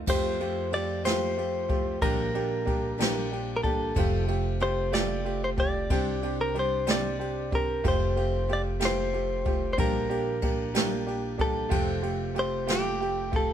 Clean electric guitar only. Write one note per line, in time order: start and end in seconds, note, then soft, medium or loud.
0.10 0.74 C5 medium
0.74 1.04 D5 medium
1.05 2.02 C5 loud
2.02 3.55 A#4 medium
3.57 3.63 A#4 medium
3.63 4.24 A4 medium
4.63 4.92 C5 medium
4.94 5.44 D5 loud
5.44 5.49 C5 medium
5.60 6.41 D5 loud
6.41 6.57 A#4 medium
6.59 6.90 C5 medium
6.91 7.55 D5 loud
7.55 7.87 A#4 medium
7.88 8.53 C5 medium
8.53 8.61 D5 medium
8.85 9.72 C5 medium
9.73 9.79 C5 medium
9.80 11.37 A#4 medium
11.41 12.01 A4 medium
12.39 12.71 C5 medium
12.71 13.37 G4 medium
13.36 13.53 A4 medium